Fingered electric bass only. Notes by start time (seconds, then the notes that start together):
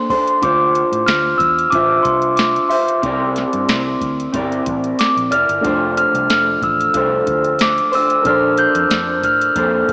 0.42 D2
0.92 A2
1.07 D2
1.39 E2
1.73 A1
2.05 C2
3.03 C2
3.54 G2
3.68 C2
4.01 D2
4.34 G1
4.66 A1
5.17 A#1
5.31 F1
5.49 G1
5.64 F1
6.14 C2
6.29 F1
6.62 A1
6.94 C2
7.27 D2
8.25 A#1
8.75 F2
8.90 F2
9.23 A2
9.56 F2
9.88 G2